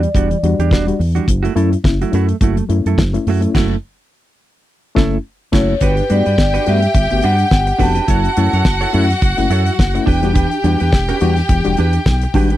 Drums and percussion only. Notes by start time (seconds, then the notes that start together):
0.03 closed hi-hat
0.15 kick, closed hi-hat
0.31 closed hi-hat
0.44 closed hi-hat
0.60 closed hi-hat
0.71 kick, snare
0.88 closed hi-hat
1.01 open hi-hat
1.16 closed hi-hat
1.28 kick, closed hi-hat
1.45 closed hi-hat
1.57 closed hi-hat
1.73 closed hi-hat
1.84 kick, snare
2.02 closed hi-hat
2.13 closed hi-hat
2.29 closed hi-hat
2.41 kick, closed hi-hat
2.57 closed hi-hat
2.70 closed hi-hat
2.86 closed hi-hat
2.98 kick, snare
3.14 closed hi-hat
3.27 open hi-hat
3.42 closed hi-hat
3.55 kick, snare, crash
4.96 kick, snare
5.53 kick, snare, crash
5.81 kick, closed hi-hat
5.97 closed hi-hat
6.10 closed hi-hat
6.26 closed hi-hat
6.38 kick, snare
6.54 closed hi-hat
6.66 closed hi-hat
6.82 closed hi-hat
6.94 kick, closed hi-hat
7.10 closed hi-hat
7.22 closed hi-hat
7.38 closed hi-hat
7.51 kick, snare
7.67 closed hi-hat
7.79 kick, open hi-hat
7.95 closed hi-hat
8.08 kick, closed hi-hat
8.25 closed hi-hat
8.37 closed hi-hat
8.53 closed hi-hat
8.65 kick, snare
8.81 closed hi-hat
8.93 closed hi-hat
9.10 snare, closed hi-hat
9.22 kick, closed hi-hat
9.38 closed hi-hat
9.51 closed hi-hat
9.66 closed hi-hat
9.79 kick, snare
9.95 closed hi-hat
10.07 kick, open hi-hat
10.23 closed hi-hat
10.35 kick, closed hi-hat
10.51 closed hi-hat
10.64 closed hi-hat
10.80 closed hi-hat
10.92 kick, snare
11.09 closed hi-hat
11.21 closed hi-hat
11.37 snare, closed hi-hat
11.49 kick, closed hi-hat
11.65 closed hi-hat
11.77 closed hi-hat
11.93 closed hi-hat
12.06 kick, snare
12.21 closed hi-hat
12.34 kick, open hi-hat
12.50 closed hi-hat